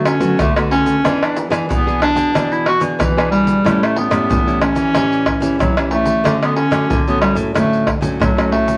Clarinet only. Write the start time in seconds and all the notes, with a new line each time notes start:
0.06 C#4
0.40 A3
0.71 C#4
1.23 D4
1.72 B3
2.03 D4
2.52 E4
2.68 F#4
3.01 E3
3.31 G3
3.83 A3
3.98 B3
4.61 C#4
5.60 F#3
5.91 A3
6.42 B3
6.56 C#4
7.08 B3
7.20 G3
7.55 A3
8.20 F#3
8.51 A3